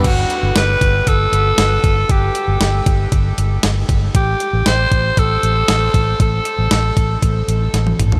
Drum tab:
CC |x---------------|----------------|----------------|----------------|
HH |x-x-x-x-x-x-x-x-|x-x-x-x-x-x-x-x-|x-x-x-x-x-x-x-x-|x-x-x-x-x-x-x-x-|
SD |----o-------o---|----o-------o---|----o-------o---|----o-------o---|
T1 |----------------|----------------|----------------|-------------o--|
T2 |----------------|----------------|----------------|--------------o-|
FT |----------------|----------------|----------------|---------------o|
BD |o-----o-o-----o-|o-----o-o-----o-|o-----o-o-----o-|o-----o-o-------|